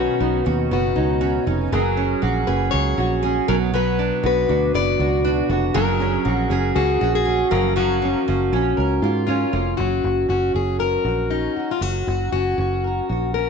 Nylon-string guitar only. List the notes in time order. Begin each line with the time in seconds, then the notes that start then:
Already playing: D#3 C#4
0.21 B3
0.46 F#4
0.71 B3
0.96 C#4
1.21 F#4
1.47 C#4
1.73 F#3
1.97 C#4
2.22 A#3
2.47 G#4
2.72 A#3
2.97 C#4
3.23 G#4
3.48 F#3
3.74 F#3
3.99 D4
4.24 B3
4.49 F#4
4.74 B3
5.00 D4
5.25 F#4
5.50 D4
5.74 F#3
6.00 C#4
6.25 A#3
6.51 G#4
6.76 A#3
7.01 C#4
7.25 G#4
7.51 F3
7.76 F3
8.02 A#3
8.28 F3
8.53 C#4
9.04 A#3
9.28 C#4
9.53 A#3